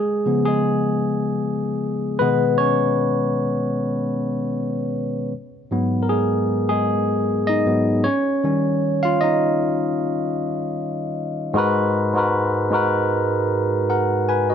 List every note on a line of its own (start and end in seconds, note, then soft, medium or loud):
0.00 0.43 G#3 medium
0.00 0.44 G#4 medium
0.26 0.78 C#3 medium
0.26 0.79 F3 soft
0.26 0.79 B3 medium
0.45 2.17 G#3 medium
0.45 2.25 G#4 medium
2.19 3.33 B2 medium
2.19 3.33 D#3 medium
2.19 3.34 G#3 medium
2.19 2.57 B3 medium
2.19 2.60 B4 loud
2.58 4.89 C#4 medium
2.58 4.88 C#5 loud
5.71 6.24 G#2 medium
5.71 6.24 F#3 medium
5.71 6.25 B3 medium
6.03 6.09 A#4 medium
6.09 6.66 G#3 medium
6.09 6.68 G#4 medium
6.69 7.44 G#3 medium
6.69 7.50 G#4 medium
7.47 8.01 D#4 medium
7.47 8.06 D#5 loud
7.66 8.01 G#2 medium
7.66 8.01 F#3 soft
7.66 8.01 B3 medium
8.04 8.44 C#4 medium
8.04 9.06 C#5 loud
8.44 11.51 D#3 medium
8.44 11.52 G3 medium
8.44 11.52 C#4 medium
9.03 9.21 F4 medium
9.03 9.22 F5 loud
9.21 10.35 D#4 medium
9.21 10.34 D#5 medium
11.54 12.00 G#2 loud
11.54 12.01 G#3 loud
11.54 12.01 F#4 loud
11.54 12.02 A#4 loud
11.58 12.02 B4 loud
12.14 12.59 G#2 medium
12.14 12.60 G#3 medium
12.14 12.60 F#4 medium
12.14 12.61 A#4 medium
12.19 12.61 B4 medium
12.70 13.33 G#2 medium
12.70 13.33 G#3 medium
12.70 13.34 F#4 medium
12.70 13.35 A#4 medium
12.75 13.35 B4 medium
13.90 14.27 A#4 medium
13.90 14.26 F#5 medium
14.29 14.49 B4 medium
14.29 14.48 G#5 medium
14.50 14.55 F#4 medium
14.50 14.55 D#5 medium